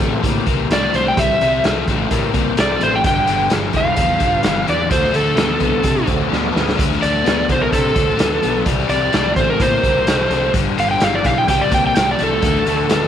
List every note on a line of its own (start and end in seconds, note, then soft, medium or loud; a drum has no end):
0.00 0.18 A1 medium
0.00 0.21 C3 medium
0.00 0.21 A3 medium
0.00 3.00 C4 medium
0.00 3.00 E4 medium
0.00 3.00 G4 medium
0.00 3.00 C5 medium
0.00 kick medium
0.00 closed hi-hat medium
0.23 0.41 A2 medium
0.23 0.44 C3 medium
0.23 0.44 A#3 medium
0.23 kick medium
0.23 closed hi-hat medium
0.46 0.65 C2 medium
0.46 0.67 C3 medium
0.46 0.68 A#3 medium
0.46 kick medium
0.46 closed hi-hat medium
0.69 0.87 C2 medium
0.69 0.92 C3 medium
0.69 0.92 A3 medium
0.69 snare loud
0.69 closed hi-hat medium
0.73 0.94 D5 medium
0.93 1.11 C2 medium
0.93 1.15 C3 medium
0.93 1.15 A3 medium
0.93 1.06 C5 medium
0.93 closed hi-hat medium
1.08 1.18 G5 medium
1.17 1.35 C2 medium
1.17 1.38 C3 medium
1.17 1.38 G3 medium
1.17 1.63 E5 medium
1.17 kick loud
1.17 closed hi-hat medium
1.41 1.59 C2 medium
1.41 1.62 C3 medium
1.41 1.62 G3 medium
1.41 closed hi-hat medium
1.64 1.82 C2 medium
1.64 1.85 C3 medium
1.64 1.86 A3 medium
1.64 snare loud
1.64 closed hi-hat medium
1.88 2.05 A1 medium
1.88 2.09 C3 medium
1.88 2.09 A3 medium
1.88 kick medium
1.88 closed hi-hat medium
2.11 2.29 A2 medium
2.11 2.32 C3 medium
2.11 2.32 A#3 medium
2.11 kick medium
2.11 closed hi-hat medium
2.34 2.52 C2 medium
2.34 2.55 C3 medium
2.34 2.55 A#3 medium
2.34 kick medium
2.34 closed hi-hat medium
2.57 2.77 C2 medium
2.57 2.78 C3 medium
2.57 2.78 A3 medium
2.57 2.81 D5 medium
2.57 snare loud
2.57 closed hi-hat medium
2.81 3.00 A1 medium
2.81 3.02 C3 medium
2.81 3.02 A3 medium
2.81 2.93 C5 medium
2.81 closed hi-hat medium
2.95 3.05 G5 medium
3.04 3.22 G1 medium
3.04 3.25 G2 medium
3.04 3.25 D3 medium
3.04 4.90 B3 medium
3.04 4.90 D4 medium
3.04 4.91 G4 medium
3.04 4.90 B4 medium
3.04 3.51 G5 medium
3.04 kick loud
3.04 closed hi-hat medium
3.26 3.46 G1 medium
3.26 3.48 G2 medium
3.26 3.48 D3 medium
3.26 closed hi-hat medium
3.50 3.70 G1 medium
3.50 3.71 G2 medium
3.50 3.72 E3 medium
3.50 snare loud
3.50 closed hi-hat medium
3.73 3.92 E1 medium
3.73 3.95 G2 medium
3.73 3.95 E3 medium
3.73 4.66 F5 loud
3.73 kick medium
3.73 closed hi-hat medium
3.96 4.16 E2 medium
3.96 4.17 G2 medium
3.96 4.18 F3 medium
3.96 kick medium
3.96 closed hi-hat medium
4.19 4.39 G1 medium
4.19 4.41 G2 medium
4.19 4.41 F3 medium
4.19 kick medium
4.19 closed hi-hat medium
4.43 4.63 G1 medium
4.43 4.65 G2 medium
4.43 4.65 E3 medium
4.43 snare loud
4.43 closed hi-hat medium
4.66 4.86 E2 medium
4.66 4.88 G2 medium
4.66 4.88 E3 medium
4.66 4.91 D5 medium
4.66 closed hi-hat medium
4.90 5.09 D2 medium
4.90 5.11 D3 medium
4.90 5.12 A3 medium
4.90 8.63 A3 medium
4.90 8.63 D4 medium
4.90 8.63 F#4 medium
4.90 8.63 A4 medium
4.90 5.14 C5 medium
4.90 kick loud
4.90 closed hi-hat medium
5.04 snare soft
5.12 5.32 D2 medium
5.12 5.34 D3 medium
5.12 5.35 A3 medium
5.12 6.06 A4 medium
5.12 closed hi-hat medium
5.36 5.55 D2 medium
5.36 5.58 D3 medium
5.36 5.59 B3 medium
5.36 snare loud
5.36 closed hi-hat medium
5.60 5.79 C2 medium
5.60 5.81 D3 medium
5.60 5.82 B3 medium
5.60 kick medium
5.60 closed hi-hat medium
5.82 6.02 C3 medium
5.82 6.05 D3 medium
5.82 6.05 C4 medium
5.82 kick medium
5.82 closed hi-hat medium
6.06 6.27 D2 medium
6.06 6.27 D3 medium
6.06 6.28 C4 medium
6.06 kick medium
6.06 closed hi-hat medium
6.28 6.50 D2 medium
6.28 6.51 D3 medium
6.28 6.51 B3 medium
6.33 snare medium
6.52 6.74 D2 medium
6.52 6.75 D3 medium
6.52 6.75 B3 medium
6.56 snare medium
6.69 snare medium
6.76 6.97 D2 medium
6.76 6.99 D3 medium
6.76 6.99 A3 medium
6.76 kick loud
6.76 closed hi-hat medium
6.93 snare soft
7.00 7.21 D2 medium
7.00 7.22 D3 medium
7.00 7.23 A3 medium
7.00 7.48 D5 loud
7.00 closed hi-hat medium
7.24 7.44 D2 medium
7.24 7.46 D3 medium
7.24 7.46 B3 medium
7.24 snare loud
7.24 closed hi-hat medium
7.49 7.67 C2 medium
7.49 7.70 D3 medium
7.49 7.70 B3 medium
7.49 7.62 C5 medium
7.49 kick medium
7.49 closed hi-hat medium
7.62 7.73 A#4 medium
7.72 7.91 C3 medium
7.72 7.93 D3 medium
7.72 7.93 C4 medium
7.72 8.64 A4 medium
7.72 kick medium
7.72 closed hi-hat medium
7.95 8.14 D2 medium
7.95 8.16 D3 medium
7.95 8.17 C4 medium
7.95 kick medium
7.95 closed hi-hat medium
8.17 8.38 D2 medium
8.17 8.39 D3 medium
8.17 8.40 B3 medium
8.17 snare loud
8.17 closed hi-hat medium
8.42 8.62 B1 medium
8.42 8.64 D3 medium
8.42 8.64 B3 medium
8.42 closed hi-hat medium
8.66 8.85 C2 medium
8.66 8.87 C3 medium
8.66 8.87 G3 medium
8.66 10.52 G3 medium
8.66 10.52 C4 medium
8.66 10.53 E4 medium
8.66 10.52 G4 medium
8.66 kick loud
8.66 closed hi-hat medium
8.79 snare soft
8.88 9.08 C2 medium
8.88 9.10 C3 medium
8.88 9.10 G3 medium
8.88 9.35 D5 medium
8.88 closed hi-hat medium
9.12 9.32 C2 medium
9.12 9.34 C3 medium
9.12 9.34 A3 medium
9.12 snare loud
9.12 closed hi-hat medium
9.36 9.55 A1 medium
9.36 9.58 C3 medium
9.36 9.58 A3 medium
9.36 9.48 C5 medium
9.36 kick medium
9.36 closed hi-hat medium
9.50 9.61 A#4 medium
9.60 9.78 A2 medium
9.60 9.82 C3 medium
9.60 9.81 A#3 medium
9.60 10.52 C5 loud
9.60 kick medium
9.60 closed hi-hat medium
9.83 10.02 C2 medium
9.83 10.04 C3 medium
9.83 10.05 A#3 medium
9.83 kick medium
9.83 closed hi-hat medium
10.07 10.25 C2 medium
10.07 10.28 C3 medium
10.07 10.28 A3 medium
10.07 snare loud
10.07 closed hi-hat medium
10.29 10.48 C2 medium
10.29 10.51 C3 medium
10.29 10.51 A3 medium
10.29 closed hi-hat medium
10.53 10.72 G1 medium
10.53 10.75 G2 medium
10.53 10.75 D3 medium
10.53 11.47 G3 medium
10.53 11.47 B3 medium
10.53 11.46 D4 medium
10.53 11.46 G4 medium
10.53 kick loud
10.53 closed hi-hat medium
10.77 10.96 G1 medium
10.77 10.98 G2 medium
10.77 10.98 D3 medium
10.77 10.90 F5 medium
10.77 closed hi-hat medium
10.91 11.01 G5 medium
11.00 11.20 G1 medium
11.00 11.22 G2 medium
11.00 11.22 E3 medium
11.00 11.14 F5 medium
11.00 snare loud
11.00 closed hi-hat medium
11.15 11.25 D5 medium
11.24 11.43 B1 medium
11.24 11.45 G2 medium
11.24 11.45 E3 medium
11.24 11.37 F5 medium
11.24 kick medium
11.24 closed hi-hat medium
11.38 11.48 G5 medium
11.47 11.66 C2 medium
11.47 11.69 C3 medium
11.47 11.70 G3 medium
11.47 11.63 G#3 medium
11.47 11.63 C#4 medium
11.47 11.63 F4 medium
11.47 11.63 G#4 medium
11.47 11.60 G5 medium
11.47 kick medium
11.47 closed hi-hat medium
11.61 12.40 G3 medium
11.61 12.41 C4 medium
11.61 12.41 E4 medium
11.61 12.41 G4 medium
11.61 11.72 D5 medium
11.71 11.90 C2 medium
11.71 11.92 C3 medium
11.71 11.92 A#3 medium
11.71 11.84 G5 medium
11.71 kick medium
11.71 closed hi-hat medium
11.87 11.96 G5 medium
11.95 12.14 C2 medium
11.95 12.16 C3 medium
11.95 12.16 A3 medium
11.95 12.07 G5 medium
11.95 snare loud
11.95 closed hi-hat medium
12.11 12.20 D5 medium
12.19 12.38 C2 medium
12.19 12.40 C3 medium
12.19 12.40 A3 medium
12.19 closed hi-hat medium
12.23 13.08 A4 medium
12.41 12.61 D2 medium
12.41 12.63 D3 medium
12.41 12.63 A3 medium
12.41 12.59 A#3 medium
12.41 12.59 D#4 medium
12.41 12.59 G4 medium
12.41 12.59 A#4 medium
12.41 kick loud
12.41 closed hi-hat medium
12.58 13.08 A3 medium
12.58 13.08 D4 medium
12.58 13.08 F#4 medium
12.58 13.08 A4 medium
12.66 12.85 D2 medium
12.66 12.87 D3 medium
12.66 12.87 A3 medium
12.66 closed hi-hat medium
12.89 13.07 D2 medium
12.89 13.08 D3 medium
12.89 13.08 B3 medium
12.89 snare loud
12.89 closed hi-hat medium